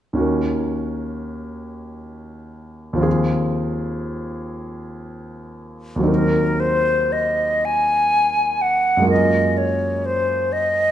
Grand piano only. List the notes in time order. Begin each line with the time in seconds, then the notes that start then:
0.13 D#2 D#3 C#4 F#4
0.19 A#4
2.93 D#2 F3
2.98 C4 F4
3.03 G#4
5.96 D#2 F#3
6.01 C4 D#4
6.06 A#4
8.97 F#2 G#3
9.02 A#3 F4
9.07 A#4